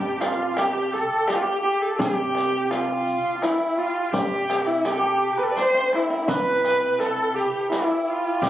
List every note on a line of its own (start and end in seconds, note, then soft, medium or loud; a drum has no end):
0.00 1.02 C3 medium
0.00 0.21 F4 medium
0.00 0.22 G4 medium
0.00 0.58 G4 medium
0.00 0.94 A4 medium
0.00 1.24 B4 medium
0.20 0.58 F4 medium
0.20 2.71 F4 medium
0.20 riq soft
0.20 tombak tek medium
0.57 0.94 G4 medium
0.57 1.29 G4 medium
0.57 riq soft
0.57 tombak tek medium
0.93 1.29 A4 medium
0.93 3.87 A4 medium
0.93 riq soft
1.27 1.37 G4 medium
1.27 1.43 G4 medium
1.27 riq medium
1.27 tombak tek medium
1.35 1.44 F4 medium
1.42 1.61 G4 medium
1.42 1.63 G4 medium
1.61 1.83 G4 medium
1.61 1.99 G4 medium
1.82 1.98 A4 medium
1.98 3.15 C3 medium
1.98 2.71 G4 loud
1.98 2.64 G4 medium
1.98 riq medium
1.98 tombak dum medium
2.35 riq soft
2.35 tombak tek medium
2.64 4.13 G4 medium
2.70 3.44 F4 medium
2.70 3.35 F4 medium
2.70 riq soft
2.70 tombak tek medium
3.07 riq soft
3.35 3.49 F4 medium
3.42 3.80 E4 medium
3.42 3.83 E4 medium
3.42 riq soft
3.42 tombak tek medium
3.77 5.99 F4 medium
3.77 4.12 F4 medium
4.12 5.29 C3 medium
4.12 4.68 G4 medium
4.12 4.86 G4 medium
4.12 riq medium
4.12 tombak dum medium
4.50 riq soft
4.50 tombak tek medium
4.67 4.87 E4 medium
4.85 5.40 G4 medium
4.85 4.99 G4 medium
4.85 riq soft
4.85 tombak tek medium
4.92 6.98 A4 medium
4.99 7.34 G4 medium
5.37 5.64 B4 medium
5.37 5.45 B4 medium
5.43 5.51 A4 medium
5.50 5.53 B4 medium
5.50 5.59 D5 medium
5.56 5.96 C5 loud
5.56 6.35 C5 medium
5.56 riq soft
5.56 tombak tek soft
5.74 tombak ka medium
5.93 7.69 E4 medium
5.93 6.30 E4 medium
5.93 riq soft
5.93 tombak tek medium
6.10 tombak ka medium
6.28 7.44 C3 medium
6.28 7.01 B4 loud
6.28 6.37 B4 medium
6.28 riq medium
6.28 tombak dum loud
6.37 6.44 B4 medium
6.45 6.51 B4 medium
6.52 6.59 B4 soft
6.59 6.66 B4 medium
6.65 6.73 B4 medium
6.65 riq soft
6.65 tombak tek medium
6.73 6.80 B4 medium
6.81 6.86 B4 medium
6.86 8.50 B4 medium
6.98 8.50 A4 medium
6.98 7.37 A4 medium
6.98 riq soft
6.98 tombak tek medium
7.34 8.41 G4 medium
7.34 7.71 G4 medium
7.34 riq soft
7.69 8.50 E4 medium
7.69 8.10 E4 medium
7.69 riq medium
7.69 tombak tek medium
8.08 8.45 F4 medium
8.42 8.50 C3 medium
8.42 8.50 G4 medium
8.42 riq medium
8.42 tombak dum medium